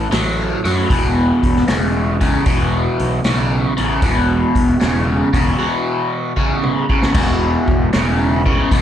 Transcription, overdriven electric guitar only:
0.11 A2 F#3
0.64 A2 F#3
0.90 E2 B2
1.68 E2 C#3
2.21 E2 C#3
2.46 E2 B2
3.25 E2 C#3
3.77 E2 C#3
4.03 E2 B2
4.80 E2 C#3
5.34 E2 C#3
5.59 E2 B2
6.37 E2 C#3
6.90 E2 C#3
7.15 E2 B2
7.93 E2 C#3
8.45 E2 C#3
8.72 E2 B2

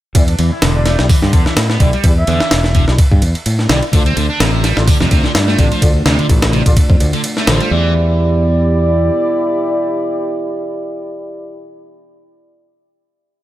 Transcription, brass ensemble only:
0.15 E4 G4 D5
0.99 E4 G4 D5
1.80 E4 G4 D5
2.04 E4 G4 D5
2.88 E4 G4 D5
3.70 E4 G4 D5
3.93 F4 A4 D5
4.77 F4 A4 D5
5.59 F4 A4 D5
5.82 F4 A4 D5
6.66 F4 A4 D5
7.48 F4 A4 C5
7.71 E4 G4 D5

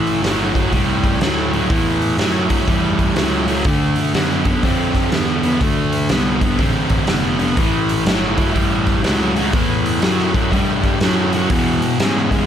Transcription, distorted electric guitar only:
Already playing: A2 E3
0.22 A2 F#3
0.54 A2 F#3
0.72 A2 G3
1.22 A2 F#3
1.52 A2 F#3
1.69 A2 E3
2.18 A2 F#3
2.49 A2 F#3
2.67 A2 G3
3.15 A2 F#3
3.47 A2 F#3
3.66 D3 A3
4.14 D3 B3
4.46 D3 B3
4.63 D3 C4
5.13 D3 B3
5.44 D3 B3
5.62 D3 A3
6.10 D3 B3
6.42 D3 B3
6.60 D3 C4
7.08 D3 B3
7.39 D3 B3
7.57 A2 E3
8.07 A2 F#3
8.37 A2 F#3
8.53 A2 G3
9.03 A2 F#3
9.36 A2 F#3
9.54 A2 E3
10.02 A2 F#3
10.35 A2 F#3
10.52 A2 G3
11.02 A2 F#3
11.33 A2 F#3
11.51 E2 B2
12.00 E2 C#3
12.30 E2 C#3

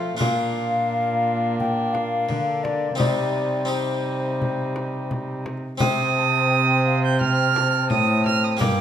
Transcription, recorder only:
Already playing: F5
0.19 F5
1.59 G5
1.93 F5
2.64 D5
2.99 D5
3.69 C5
5.81 G5
6.16 A5
6.51 G5
6.86 F5
7.20 G5
7.56 A5
8.60 G5

